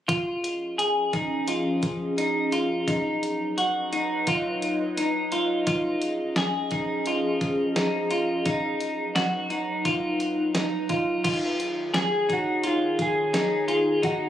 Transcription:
0.08 ambient pad F3 C#4 G#4 D#5, clean electric guitar F4, kick, closed hi-hat
0.44 closed hi-hat
0.78 clean electric guitar G#4, closed hi-hat
1.13 clean electric guitar D#4, kick, closed hi-hat
1.48 clean electric guitar F4, closed hi-hat
1.83 kick, closed hi-hat
2.18 clean electric guitar D#4, closed hi-hat
2.52 clean electric guitar F4, closed hi-hat
2.87 ambient pad F#3 D#4 B4, clean electric guitar D#4, kick, closed hi-hat
3.23 closed hi-hat
3.58 clean electric guitar F#4, closed hi-hat
3.93 clean electric guitar D#4, closed hi-hat
4.27 clean electric guitar F4, kick, closed hi-hat
4.62 closed hi-hat
4.97 clean electric guitar D#4, closed hi-hat
5.32 clean electric guitar F4, closed hi-hat
5.66 ambient pad F3 C#4 G#4, clean electric guitar F4, kick, closed hi-hat
6.02 closed hi-hat
6.36 clean electric guitar G#4, snare, closed hi-hat
6.71 clean electric guitar D#4, kick, closed hi-hat
7.06 clean electric guitar F4, closed hi-hat
7.41 kick, closed hi-hat
7.76 clean electric guitar D#4, snare, closed hi-hat
8.11 clean electric guitar F4, closed hi-hat
8.45 ambient pad F#3 D#4 B4, clean electric guitar D#4, kick, closed hi-hat
8.80 closed hi-hat
9.15 clean electric guitar F#4, snare, closed hi-hat
9.50 clean electric guitar D#4, closed hi-hat
9.85 clean electric guitar F4, kick, closed hi-hat
10.20 closed hi-hat
10.55 clean electric guitar D#4, snare, closed hi-hat
10.89 clean electric guitar F4, kick, closed hi-hat
11.24 ambient pad D#3 D#4 G#4 C#5, clean electric guitar F4, kick, closed hi-hat, crash
11.60 closed hi-hat
11.94 clean electric guitar G#4, snare, closed hi-hat
11.98 electric slide guitar G#4
12.29 clean electric guitar D#4, kick, closed hi-hat
12.33 electric slide guitar F#4
12.63 clean electric guitar F4, electric slide guitar F4, closed hi-hat
12.99 electric slide guitar G#4, kick, closed hi-hat
13.33 clean electric guitar D#4, snare, closed hi-hat
13.68 clean electric guitar F4, closed hi-hat
14.03 ambient pad F#3 B3 B4, clean electric guitar D#4, electric slide guitar F#4, kick, closed hi-hat

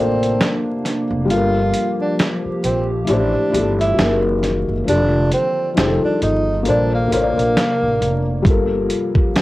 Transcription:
Already playing: upright bass A1, ambient pad C3 A#3 D4, felt piano A#3 A4 C5, tenor saxophone C4
0.00 felt piano D5
0.23 closed hi-hat
0.41 snare, closed hi-hat
0.85 snare, closed hi-hat
1.11 upright bass F1
1.25 ambient pad F3 G4, felt piano G3 F4
1.29 upright bass G1, tenor saxophone F4, felt piano A4 A#4, closed hi-hat
1.74 closed hi-hat
2.01 tenor saxophone D4
2.19 snare, closed hi-hat
2.45 muted upright bass stroke
2.64 upright bass A#1, tenor saxophone C4, closed hi-hat
3.05 ambient pad E3 C4, felt piano A3 E4, closed hi-hat
3.09 upright bass A1, tenor saxophone D4, felt piano G4 C5
3.35 muted upright bass stroke
3.49 felt piano A3 E4
3.53 upright bass G1, felt piano G4 A4, closed hi-hat
3.80 tenor saxophone E4, closed hi-hat
3.94 ambient pad D#3 G#3 A#3 F#4, felt piano F#3 D#4
3.98 upright bass F#1, felt piano G#4 A#4, snare, closed hi-hat
4.43 snare, closed hi-hat
4.69 upright bass F#1
4.84 upright bass F1, ambient pad D3 G3 F4, felt piano F3 D4
4.88 tenor saxophone D4, felt piano G4 A4, closed hi-hat
5.32 tenor saxophone C4, closed hi-hat
5.73 upright bass F1, ambient pad D#3, felt piano F3 D#4, closed hi-hat
5.78 tenor saxophone C4, felt piano G4 G#4, snare
5.87 felt piano A4
6.03 tenor saxophone D4, muted upright bass stroke
6.22 upright bass G1, tenor saxophone D#4, closed hi-hat
6.63 upright bass A#1, ambient pad C3 A#3 D4, felt piano A#3 A4, closed hi-hat
6.68 tenor saxophone D4, felt piano C5 D5
6.94 tenor saxophone A#3
7.08 upright bass A1, felt piano A#3 A4
7.12 tenor saxophone A#3, felt piano C5 C#5, closed hi-hat
7.22 felt piano D5
7.37 upright bass A#1, closed hi-hat
7.57 snare, closed hi-hat
7.82 upright bass A1
8.01 upright bass F1, closed hi-hat
8.43 upright bass G1, ambient pad F3 G4, felt piano G3 F4, kick, closed hi-hat
8.47 felt piano A4 A#4
8.90 closed hi-hat
9.15 kick
9.36 snare, closed hi-hat

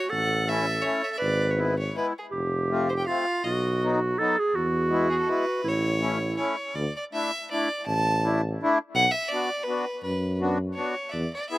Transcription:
Already playing: clarinet F#4
0.10 tuba A1, clarinet A4, fiddle F#5
0.46 accordion A3 C#4 E4, clarinet A4, fiddle E5
0.82 accordion A3 C#4 E4, fiddle C#5
1.04 fiddle E5
1.13 fiddle E5
1.17 tuba G#1, clarinet B4, fiddle D5
1.51 fiddle C#5
1.57 accordion G#3 B3 E4, fiddle B4
1.79 fiddle C#5
1.94 accordion G#3 B3 E4, fiddle B4
2.18 fiddle G#4
2.31 tuba F1, clarinet G4
2.70 accordion A3 C4 F4
2.89 fiddle C5
2.98 fiddle G5
3.06 accordion A3 C4 F4, clarinet F4, fiddle F5
3.44 tuba B1, clarinet F#4, fiddle D#5
3.83 accordion F#3 B3 D#4
4.18 accordion F#3 B3 D#4, clarinet A4
4.39 clarinet G#4
4.54 tuba E2, clarinet F#4
4.89 accordion G#3 B3 E4
5.09 fiddle G#4
5.20 fiddle A4
5.27 accordion G#3 B3 E4, fiddle B4
5.64 tuba A1, clarinet E4
5.68 fiddle C#5
6.01 accordion A3 C#4 E4, clarinet E4
6.37 accordion A3 C#4 E4, fiddle C#5
6.75 tuba D2, fiddle D5
6.97 fiddle D5
7.13 accordion A3 D4 E4, fiddle E5
7.51 accordion A3 D4 E4, fiddle D5
7.87 tuba A1, fiddle A5
8.24 accordion A3 D4 E4
8.62 accordion A3 D4 E4
8.94 tuba B1, fiddle F#5
9.11 fiddle E5
9.29 accordion B3 D4, fiddle D5
9.34 accordion F#4
9.63 fiddle B4
9.67 accordion B3 D4 F#4
10.03 tuba F#2, fiddle B4
10.41 accordion B3 D4 F#4
10.74 accordion B3 D4, fiddle C#5
10.78 accordion F#4
11.09 fiddle D5 E5
11.13 tuba E2
11.34 fiddle D5
11.49 accordion B3 E4 G#4, fiddle E5

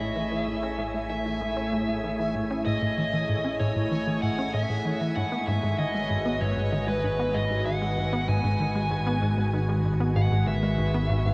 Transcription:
Already playing: synth drone A1, analog synth pad A3 E4 G#4 C#5, lead electric guitar E5, synth texture G#5
0.00 analog synth bass A2
0.16 analog synth bass E3
0.32 analog synth bass E3
0.47 analog synth bass A2
0.63 analog synth bass C#4
0.79 analog synth bass A2
0.94 analog synth bass A2
1.09 analog synth bass E3, lead electric guitar E5
1.25 analog synth bass E3
1.41 analog synth bass A2
1.56 analog synth bass C#4
1.72 analog synth bass A2
1.88 analog synth bass A2
2.04 analog synth bass E3
2.19 analog synth bass E3
2.35 analog synth bass A2
2.51 analog synth bass C#4
2.65 analog synth bass A2, lead electric guitar D#5
2.82 analog synth bass A2
2.98 analog synth bass E3
3.13 analog synth bass E3
3.29 analog synth bass A2
3.44 analog synth bass C#4
3.60 analog synth bass A2, lead electric guitar C#5
3.76 analog synth bass A2
3.91 analog synth bass E3
4.07 analog synth bass E3
4.22 analog synth bass A2, lead electric guitar F#5
4.38 analog synth bass C#4
4.54 analog synth bass A2, lead electric guitar E5
4.70 analog synth bass A2
4.85 analog synth bass E3
5.01 analog synth bass E3
5.16 synth drone G#1, analog synth bass G#2, analog synth pad G#3, lead electric guitar F#5
5.32 analog synth bass B3
5.38 analog synth pad D#3
5.47 analog synth bass G#2, lead electric guitar E5
5.63 analog synth bass G#2
5.68 analog synth pad B4
5.78 analog synth bass D#3, lead electric guitar D#5
5.82 analog synth pad F#4
5.94 analog synth bass G#3
6.10 analog synth bass G#2
6.26 analog synth bass B3
6.41 analog synth bass G#2, lead electric guitar C#5
6.57 analog synth bass G#2
6.72 analog synth bass D#3
6.88 analog synth bass G#3, lead electric guitar B4
7.04 analog synth bass G#2
7.19 analog synth bass B3
7.34 analog synth bass G#2, lead electric guitar D#5
7.51 analog synth bass G#2
7.66 analog synth bass D#3, lead electric guitar F#5
7.82 analog synth bass G#3
7.97 analog synth bass G#2
8.13 analog synth bass B3
8.28 analog synth bass G#2, lead electric guitar G#5
8.44 analog synth bass G#2
8.60 analog synth bass D#3
8.75 analog synth bass G#3
8.91 analog synth bass G#2
9.06 analog synth bass B3
9.22 analog synth bass G#2
9.38 analog synth bass G#2
9.53 analog synth bass D#3
9.69 analog synth bass G#3
9.85 analog synth bass G#2
10.00 analog synth bass B3
10.16 analog synth bass G#2, lead electric guitar F#5
10.31 analog synth bass G#2
10.47 analog synth bass D#3, lead electric guitar E5
10.63 analog synth bass G#3
10.78 analog synth bass G#2
10.94 analog synth bass B3
11.10 analog synth bass G#2
11.25 analog synth bass G#2

